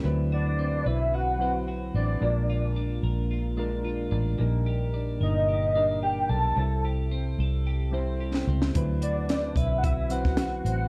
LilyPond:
<<
  \new Staff \with { instrumentName = "Soft synth lead" } { \time 4/4 \key d \mixolydian \tempo 4 = 110 r8 d''4 e''8 fis''4 r8 d''8~ | d''4 r2. | r4. ees''8 ees''4 g''8 a''8~ | a''8 r2. r8 |
r8 d''4 e''16. fis''32 e''8 fis''4 fis''8 | }
  \new Staff \with { instrumentName = "Clean electric guitar" } { \time 4/4 \key d \mixolydian d8 fis'8 c'8 b'8 fis'8 c'8 fis'8 c'8 | bes,8 f'8 d'8 bes'8 f'8 d'8 f'8 d'8 | bes,8 g'8 d'8 bes'8 g'8 d'8 g'8 d'8 | c8 g'8 c'8 a'8 g'8 c'8 g'8 c'8 |
d8 fis'8 c'8 b'8 fis'8 c'8 fis'8 c'8 | }
  \new Staff \with { instrumentName = "Synth keys" } { \time 4/4 \key d \mixolydian <fis c' e' b'>4~ <fis c' e' b'>16 r4 r16 <fis c' e' b'>4 r8 | <aes d' f' bes'>4~ <aes d' f' bes'>16 r4 r16 <aes d' f' bes'>4 r8 | <g d' ees' bes'>4~ <g d' ees' bes'>16 r4 r16 <g d' ees' bes'>4 r8 | <g c' e' a'>4~ <g c' e' a'>16 r4 r16 <g c' e' c''>4 r8 |
<f fis c' e' b'>4~ <f fis c' e' b'>16 r4 r16 <fis c' e' b'>4 r8 | }
  \new Staff \with { instrumentName = "Fingered electric bass" } { \clef bass \time 4/4 \key d \mixolydian d,4. b,,2 a,,8 | bes,,4. bes,,2 a,,8 | bes,,4. g,,2 b,,8 | c,4. c,2 des,8 |
d,4. b,,2 a,,8 | }
  \new DrumStaff \with { instrumentName = "Drums" } \drummode { \time 4/4 r4 r4 r4 r4 | r4 r4 r4 r4 | r4 r4 r4 r4 | r4 r4 r4 r16 sn8 sn16 |
<hh bd>8 hh8 <hh sn>8 <hh bd>8 <hh bd>8 hh16 <bd sn>16 <hh sn>8 hh8 | }
>>